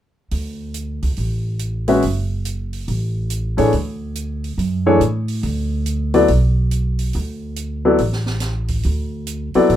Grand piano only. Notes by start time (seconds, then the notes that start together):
1.88 G#3 C#4 F#4 B4 E5
3.57 E3 A3 D4 G#4 C#5
4.86 E3 A3 D4 G#4 C#5
6.14 F#3 B3 E4 A4 D5
7.85 F#3 B3 E4 A4 D5
9.55 F#3 B3 E4 A4 D5